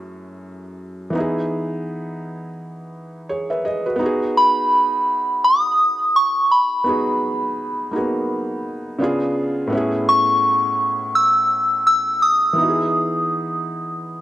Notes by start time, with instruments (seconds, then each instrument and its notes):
Already playing: felt piano F#2 A3 C#4 E4 G#4
1.10 felt piano E3 B3
1.15 felt piano D#4 E4
1.20 felt piano G#4
3.29 felt piano G#4 C#5
3.50 felt piano B4 E5
3.65 felt piano G#4 D#5
3.86 felt piano F#4 B4
3.96 felt piano B3 D#4
4.03 felt piano F#4 G#4
4.37 synth bell B5
5.44 synth bell D#6
6.16 synth bell C#6
6.52 synth bell B5
6.84 felt piano B3 D#4 F#4
6.89 felt piano G#4
7.91 felt piano A#3 D#4 F#4
7.96 felt piano B3 G#4
8.99 felt piano C#3 B3 D4 F4
9.03 felt piano G#4
9.67 felt piano A2 B3
9.72 felt piano C#4 E4
9.77 felt piano G#4
10.09 synth bell C#6
11.15 synth bell E6
11.87 synth bell E6
12.22 synth bell D#6
12.53 felt piano E3 B3
12.58 felt piano D#4 E4
12.63 felt piano F#4
12.70 felt piano G#4